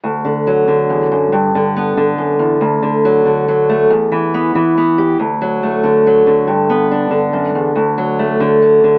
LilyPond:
\new Staff \with { instrumentName = "Steel-string acoustic guitar" } { \clef bass \time 3/4 \key d \major \tempo 4 = 140 << { r4 fis2 | r4 b2 | r4 fis4 fis8 a8 | r4 b4 b8 g'8 |
r8 fis8 a4 fis4 | r8 b8 d'2 | r8 fis8 a4 fis4 | } \\ { d,8 d4 d8 e,8 fis,8 | g,8 d4 d8 fis,8 e,8 | d,8 d4 d4. | e,8 e4 e4. |
d,4. d4 d8 | g,4. d8 fis,8 e,8 | d,4. d4 d8 | } >> }